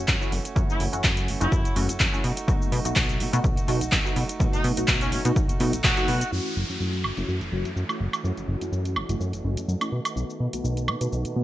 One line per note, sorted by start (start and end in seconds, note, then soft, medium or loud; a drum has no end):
0.07 0.16 F#2 medium
0.07 0.30 E3 medium
0.07 0.31 A3 medium
0.07 0.33 C#4 loud
0.07 0.33 F#4 loud
0.07 kick loud
0.07 clap loud
0.07 shaker medium
0.21 0.34 A3 medium
0.21 0.34 C#4 medium
0.21 0.34 E4 medium
0.21 0.34 F#4 medium
0.21 shaker soft
0.31 0.40 F#1 medium
0.31 0.45 E3 medium
0.31 0.45 A3 medium
0.31 0.45 C#4 medium
0.31 0.43 F#4 medium
0.31 open hi-hat loud
0.44 0.55 A3 soft
0.44 0.56 C#4 medium
0.44 0.56 F#4 medium
0.44 closed hi-hat medium
0.44 shaker medium
0.55 0.64 F#2 loud
0.55 1.02 E3 medium
0.55 0.90 A3 medium
0.55 1.04 A3 medium
0.55 0.90 C#4 medium
0.55 1.04 C#4 loud
0.55 0.90 E4 medium
0.55 0.90 F#4 loud
0.55 1.06 F#4 medium
0.55 kick loud
0.55 shaker medium
0.69 0.78 F#1 soft
0.69 0.81 E4 medium
0.69 shaker soft
0.80 0.88 F#1 medium
0.80 open hi-hat medium
0.92 1.02 F#2 soft
0.92 1.38 A3 medium
0.92 1.38 C#4 medium
0.92 1.38 E4 medium
0.92 1.38 F#4 medium
0.92 closed hi-hat medium
0.92 shaker medium
1.03 1.30 F#2 medium
1.03 1.26 E3 medium
1.03 1.27 A3 medium
1.03 1.29 C#4 loud
1.03 1.29 F#4 loud
1.03 kick loud
1.03 clap loud
1.03 shaker medium
1.17 closed hi-hat medium
1.17 shaker soft
1.27 1.36 F#1 medium
1.27 1.41 E3 medium
1.27 1.41 A3 medium
1.27 1.41 C#4 medium
1.27 1.39 F#4 medium
1.27 open hi-hat medium
1.40 1.48 F#1 loud
1.40 1.53 A3 medium
1.40 1.67 A3 medium
1.40 1.54 C#4 medium
1.40 1.65 C#4 medium
1.40 1.54 E4 medium
1.40 1.76 E4 medium
1.40 1.63 F#4 medium
1.40 1.54 F#4 loud
1.40 closed hi-hat medium
1.40 shaker medium
1.52 1.64 F#2 medium
1.52 kick loud
1.52 shaker medium
1.64 1.74 F#1 soft
1.64 1.76 A3 soft
1.64 1.77 C#4 medium
1.64 1.76 F#4 medium
1.64 closed hi-hat medium
1.64 shaker soft
1.75 1.88 F#1 medium
1.75 1.89 E3 medium
1.75 1.90 A3 medium
1.75 1.89 A3 medium
1.75 1.90 C#4 medium
1.75 1.89 C#4 medium
1.75 1.91 E4 medium
1.75 1.91 F#4 loud
1.75 1.87 F#4 medium
1.75 open hi-hat loud
1.88 1.98 F#2 soft
1.88 2.00 A3 soft
1.88 2.00 C#4 medium
1.88 2.00 F#4 medium
1.88 closed hi-hat medium
1.88 shaker medium
2.00 2.08 F#2 medium
2.00 2.23 E3 loud
2.00 2.24 A3 medium
2.00 2.25 C#4 loud
2.00 2.25 F#4 loud
2.00 kick loud
2.00 clap loud
2.00 shaker medium
2.13 2.23 A3 medium
2.13 2.23 C#4 medium
2.13 2.23 E4 medium
2.13 2.23 F#4 medium
2.13 shaker soft
2.23 2.32 B2 medium
2.23 2.37 F#3 medium
2.23 2.38 A3 medium
2.23 2.37 D#4 medium
2.23 2.35 F#4 medium
2.23 open hi-hat medium
2.37 2.48 A3 soft
2.37 2.48 D#4 medium
2.37 2.48 F#4 medium
2.37 closed hi-hat medium
2.37 shaker medium
2.48 2.56 B1 loud
2.48 2.95 F#3 medium
2.48 2.82 A3 medium
2.48 2.96 A3 medium
2.48 2.82 B3 medium
2.48 2.82 D#4 medium
2.48 2.96 D#4 loud
2.48 2.82 F#4 loud
2.48 2.98 F#4 loud
2.48 kick loud
2.48 shaker medium
2.62 shaker soft
2.72 2.80 B2 loud
2.72 open hi-hat medium
2.85 2.94 B1 soft
2.85 3.30 A3 medium
2.85 3.30 B3 medium
2.85 3.30 D#4 medium
2.85 3.30 F#4 medium
2.85 closed hi-hat medium
2.85 shaker medium
2.96 3.22 B1 medium
2.96 3.18 F#3 medium
2.96 3.19 A3 medium
2.96 3.21 D#4 medium
2.96 3.21 F#4 loud
2.96 kick loud
2.96 clap loud
2.96 shaker medium
3.09 closed hi-hat medium
3.09 shaker soft
3.19 3.28 B2 medium
3.19 3.33 F#3 medium
3.19 3.33 A3 medium
3.19 3.33 D#4 medium
3.19 3.31 F#4 medium
3.19 open hi-hat loud
3.32 3.40 B2 loud
3.32 3.46 A3 medium
3.32 3.58 A3 medium
3.32 3.46 B3 medium
3.32 3.46 D#4 medium
3.32 3.57 D#4 medium
3.32 3.55 F#4 medium
3.32 3.46 F#4 loud
3.32 closed hi-hat medium
3.32 shaker medium
3.44 3.57 B1 medium
3.44 kick loud
3.44 shaker medium
3.56 3.66 B2 soft
3.56 3.67 A3 soft
3.56 3.68 D#4 medium
3.56 3.68 F#4 medium
3.56 closed hi-hat medium
3.56 shaker soft
3.67 3.81 B2 medium
3.67 3.81 F#3 medium
3.67 3.82 A3 medium
3.67 3.81 A3 medium
3.67 3.82 B3 medium
3.67 3.83 D#4 medium
3.67 3.81 D#4 medium
3.67 3.83 F#4 loud
3.67 3.79 F#4 medium
3.67 open hi-hat loud
3.80 3.90 B1 soft
3.80 3.91 A3 soft
3.80 3.92 D#4 medium
3.80 3.92 F#4 medium
3.80 closed hi-hat medium
3.80 shaker medium
3.92 4.00 B1 medium
3.92 4.14 F#3 medium
3.92 4.16 A3 medium
3.92 4.17 D#4 loud
3.92 4.17 F#4 loud
3.92 kick loud
3.92 clap loud
3.92 shaker medium
4.05 4.18 A3 medium
4.05 4.18 B3 medium
4.05 4.18 D#4 medium
4.05 4.18 F#4 loud
4.05 shaker soft
4.15 4.24 B2 medium
4.15 4.29 F#3 medium
4.15 4.29 A3 medium
4.15 4.29 D#4 medium
4.15 4.27 F#4 medium
4.15 open hi-hat medium
4.28 4.39 A3 soft
4.28 4.40 D#4 medium
4.28 4.40 F#4 medium
4.28 closed hi-hat medium
4.28 shaker medium
4.39 4.48 B1 loud
4.39 4.87 F#3 medium
4.39 4.74 A3 medium
4.39 4.88 A3 medium
4.39 4.74 B3 medium
4.39 4.74 D#4 medium
4.39 4.88 D#4 loud
4.39 4.74 F#4 loud
4.39 4.90 F#4 loud
4.39 kick loud
4.39 shaker medium
4.53 4.62 B2 soft
4.53 4.65 D#4 medium
4.53 closed hi-hat soft
4.53 shaker soft
4.64 4.72 B2 loud
4.64 open hi-hat loud
4.77 4.86 B1 soft
4.77 5.22 A3 medium
4.77 5.22 B3 medium
4.77 5.22 D#4 medium
4.77 5.22 F#4 medium
4.77 closed hi-hat medium
4.77 shaker medium
4.88 5.14 B1 medium
4.88 5.10 F#3 medium
4.88 5.11 A3 medium
4.88 5.13 F#4 loud
4.88 kick loud
4.88 clap loud
4.88 shaker medium
5.01 5.08 C#4 medium
5.01 closed hi-hat medium
5.01 shaker soft
5.11 5.20 B2 medium
5.11 5.25 F#3 medium
5.11 5.25 A3 medium
5.11 5.21 C#4 medium
5.11 5.25 D#4 medium
5.11 5.23 F#4 medium
5.11 open hi-hat loud
5.24 5.32 B2 loud
5.24 5.38 A3 medium
5.24 5.50 A3 medium
5.24 5.38 B3 medium
5.24 5.38 D#4 medium
5.24 5.49 D#4 medium
5.24 5.47 F#4 medium
5.24 5.38 F#4 loud
5.24 closed hi-hat medium
5.24 shaker medium
5.36 5.49 B1 medium
5.36 kick loud
5.36 shaker medium
5.48 5.58 B2 soft
5.48 5.59 A3 medium
5.48 5.61 D#4 medium
5.48 5.60 F#4 medium
5.48 closed hi-hat medium
5.48 shaker soft
5.59 5.73 B2 loud
5.59 5.73 F#3 medium
5.59 5.74 A3 medium
5.59 5.73 A3 medium
5.59 5.75 B3 medium
5.59 5.75 D#4 medium
5.59 5.73 D#4 medium
5.59 5.75 F#4 loud
5.59 5.71 F#4 medium
5.59 open hi-hat loud
5.72 5.82 B1 soft
5.72 5.83 A3 medium
5.72 5.84 D#4 soft
5.72 5.84 F#4 medium
5.72 closed hi-hat medium
5.72 shaker medium
5.83 5.92 B1 medium
5.83 6.06 F#3 loud
5.83 6.07 A3 loud
5.83 6.08 D#4 medium
5.83 6.32 F#4 medium
5.83 6.09 F#4 loud
5.83 kick loud
5.83 clap loud
5.83 shaker medium
5.97 6.10 A3 medium
5.97 6.10 B3 medium
5.97 6.10 D#4 medium
5.97 6.10 F#4 loud
5.97 closed hi-hat soft
5.97 shaker soft
6.07 6.23 B2 loud
6.07 6.21 F#3 medium
6.07 6.21 A3 medium
6.07 6.21 D#4 medium
6.07 6.19 F#4 medium
6.07 open hi-hat loud
6.20 6.31 A3 medium
6.20 6.33 D#4 medium
6.20 6.32 F#4 medium
6.20 closed hi-hat medium
6.20 shaker medium
6.31 6.40 F#2 medium
6.31 6.78 E3 medium
6.31 6.66 A3 medium
6.31 6.80 A3 medium
6.31 6.66 C#4 medium
6.31 6.66 E4 medium
6.31 9.89 F#4 medium
6.31 6.66 F#4 loud
6.31 8.22 E5 medium
6.31 11.44 A5 medium
6.31 downlifter medium
6.31 shaker medium
6.46 shaker soft
6.56 6.64 F#1 medium
6.69 6.78 F#2 soft
6.69 7.14 A3 medium
6.69 7.14 C#4 medium
6.69 7.14 E4 medium
6.69 7.14 F#4 medium
6.69 closed hi-hat medium
6.69 shaker medium
6.79 7.06 F#2 medium
6.79 7.25 E3 medium
6.79 7.28 A3 medium
6.79 7.29 C#4 medium
6.79 7.30 F#4 medium
6.79 shaker medium
6.93 closed hi-hat soft
6.93 shaker soft
7.04 7.12 F#1 medium
7.04 high woodblock medium
7.17 7.24 F#1 medium
7.17 7.30 A3 medium
7.17 7.30 C#4 medium
7.17 7.30 E4 medium
7.17 7.30 F#4 loud
7.17 closed hi-hat medium
7.17 shaker medium
7.27 7.41 F#2 medium
7.27 8.21 E3 medium
7.27 8.25 A3 medium
7.27 8.25 C#4 medium
7.27 shaker soft
7.32 8.28 F#4 medium
7.41 7.50 F#1 soft
7.41 closed hi-hat medium
7.41 shaker soft
7.52 7.65 F#1 medium
7.52 7.66 A3 medium
7.52 7.67 C#4 medium
7.52 7.67 E4 medium
7.52 7.67 F#4 loud
7.65 7.74 F#2 soft
7.65 closed hi-hat medium
7.65 shaker medium
7.76 7.84 F#2 medium
7.76 shaker medium
7.89 8.02 A3 medium
7.89 8.02 C#4 medium
7.89 8.02 E4 medium
7.89 8.02 F#4 medium
7.89 high woodblock medium
7.89 shaker soft
8.00 8.08 F#1 medium
8.13 closed hi-hat medium
8.13 high woodblock medium
8.13 shaker medium
8.23 8.32 F#2 loud
8.23 9.18 E3 medium
8.23 8.58 A3 medium
8.23 9.20 A3 medium
8.23 8.58 C#4 medium
8.23 9.20 C#4 medium
8.23 8.58 E4 medium
8.23 8.58 F#4 loud
8.23 9.91 D#5 medium
8.23 shaker soft
8.28 9.22 F#4 loud
8.37 8.46 F#1 soft
8.37 closed hi-hat soft
8.37 shaker soft
8.48 8.56 F#1 medium
8.61 8.70 F#2 soft
8.61 9.06 A3 medium
8.61 9.06 C#4 medium
8.61 9.06 E4 medium
8.61 9.06 F#4 medium
8.61 closed hi-hat medium
8.61 shaker medium
8.72 8.98 F#2 medium
8.72 shaker soft
8.85 closed hi-hat soft
8.85 shaker soft
8.96 9.04 F#1 medium
8.96 high woodblock medium
9.09 9.16 F#1 loud
9.09 9.22 A3 medium
9.09 9.22 C#4 medium
9.09 9.22 E4 medium
9.09 9.22 F#4 loud
9.09 closed hi-hat medium
9.09 shaker medium
9.19 9.33 F#2 medium
9.19 9.92 E3 medium
9.19 9.93 A3 medium
9.19 9.92 C#4 medium
9.19 9.91 F#4 medium
9.19 shaker soft
9.33 9.42 F#1 soft
9.33 closed hi-hat medium
9.33 shaker soft
9.44 9.57 F#1 medium
9.44 9.58 A3 medium
9.44 9.59 C#4 medium
9.44 9.59 E4 medium
9.44 9.59 F#4 medium
9.57 9.66 F#2 soft
9.57 closed hi-hat medium
9.57 shaker medium
9.68 9.76 F#2 medium
9.68 shaker medium
9.81 9.91 A3 medium
9.81 9.91 C#4 medium
9.81 9.91 E4 medium
9.81 9.91 F#4 medium
9.81 closed hi-hat soft
9.81 high woodblock medium
9.81 shaker soft
9.91 10.00 B2 medium
9.91 10.62 D#3 medium
9.91 10.64 A3 medium
9.91 11.44 D#4 medium
9.91 10.64 D#4 medium
9.91 10.66 F#4 medium
9.91 11.44 B4 medium
10.05 closed hi-hat medium
10.05 high woodblock medium
10.05 shaker medium
10.16 10.24 B1 loud
10.16 10.50 A3 medium
10.16 10.50 B3 medium
10.16 10.50 D#4 medium
10.16 10.50 F#4 medium
10.16 shaker soft
10.30 shaker soft
10.40 10.48 B2 medium
10.53 10.62 B1 soft
10.53 10.98 A3 medium
10.53 10.98 B3 medium
10.53 10.98 D#4 medium
10.53 10.98 F#4 medium
10.53 closed hi-hat medium
10.53 shaker medium
10.63 10.90 B1 medium
10.63 11.09 D#3 medium
10.63 11.12 A3 medium
10.63 11.13 D#4 medium
10.63 11.15 F#4 medium
10.63 shaker soft
10.77 closed hi-hat soft
10.77 shaker soft
10.88 10.96 B2 medium
10.88 high woodblock medium
11.01 11.08 B2 medium
11.01 11.14 A3 medium
11.01 11.14 B3 medium
11.01 11.14 D#4 medium
11.01 11.14 F#4 loud
11.01 closed hi-hat medium
11.01 shaker medium
11.10 11.25 B1 medium
11.10 11.44 D#3 medium
11.10 11.44 A3 medium
11.10 11.44 D#4 medium
11.10 shaker soft
11.16 11.44 F#4 medium
11.25 11.34 B2 soft
11.25 closed hi-hat soft
11.25 shaker soft
11.35 11.44 B2 medium
11.35 11.44 A3 medium
11.35 11.44 B3 medium
11.35 11.44 D#4 medium
11.35 11.44 F#4 medium